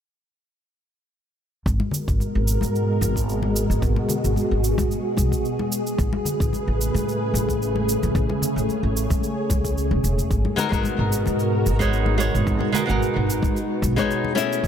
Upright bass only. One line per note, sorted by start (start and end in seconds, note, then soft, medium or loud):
1.66 1.78 G#1 medium
2.08 2.18 G#1 medium
2.35 2.56 G#1 medium
2.62 3.03 G#2 medium
3.01 3.65 G#1 medium
3.70 3.80 G#1 medium
3.82 3.94 G#1 medium
4.24 4.34 G#1 medium
4.51 4.72 G#1 medium
4.78 4.88 G#2 medium
5.18 5.29 B1 medium
5.99 6.10 A1 medium
6.40 6.50 A1 medium
6.68 6.88 A1 medium
6.94 7.35 A2 medium
7.34 7.97 A1 medium
8.03 8.13 A1 medium
8.15 8.26 A1 medium
8.56 8.66 A1 medium
8.83 9.04 A1 medium
9.11 9.21 A2 medium
9.50 9.92 C#2 medium
9.91 10.01 E1 medium
10.04 10.16 E1 medium
10.18 10.28 E2 medium
10.31 10.42 G#1 medium
10.72 10.82 G#1 medium
10.99 11.20 G#1 medium
11.26 11.68 G#2 medium
11.66 12.30 G#1 medium
12.35 12.45 G#1 medium
12.47 12.59 G#1 medium
12.90 12.99 G#1 medium
13.16 13.37 G#1 medium
13.43 13.53 G#2 medium
13.82 13.94 B1 medium
14.64 14.68 A1 medium